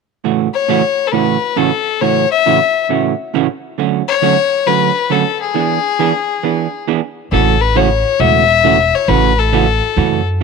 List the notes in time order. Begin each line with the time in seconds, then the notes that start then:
0.24 A2 C#3 E3 A3 C#4 F#4
0.54 C#5
0.68 A2 C#3 E3 A3 C#4 F#4
1.07 A4
1.12 A2 C#3 E3 A3 C#4 F#4 B4
1.56 A2 C#3 E3 A3 C#4 F#4 A4
2.01 A2 C#3 E3 A3 C#4 F#4 C#5
2.31 E5
2.46 A2 C#3 E3 A3 C#4 F#4
2.89 A2 C#3 E3 A3 C#4 F#4
3.34 A2 C#3 E3 A3 C#4 F#4
3.78 D3 F#3 A3 C#4 F#4
4.08 C#5
4.22 D3 F#3 A3 C#4 F#4
4.67 D3 F#3 A3 C#4 F#4 B4
5.10 D3 F#3 A3 C#4 F#4 A4
5.41 G#4
5.54 E3 B3 D4 G#4
5.99 E3 B3 D4 G#4
6.43 E3 B3 D4 G#4
6.87 E3 B3 D4 G#4
7.31 A1 C#3 E3 A3 C#4 F#4 A4
7.61 B4
7.75 C#3 E3 A3 C#4 F#4 C#5
8.20 E1 C#3 E3 A3 C#4 F#4 E5
8.64 C#3 E3 A3 C#4 F#4
8.95 C#5
9.08 A1 C#3 E3 A3 C#4 F#4 B4
9.39 A4
9.53 C#3 E3 A3 C#4 F#4
9.97 F#2 C#3 E3 A3 C#4 F#4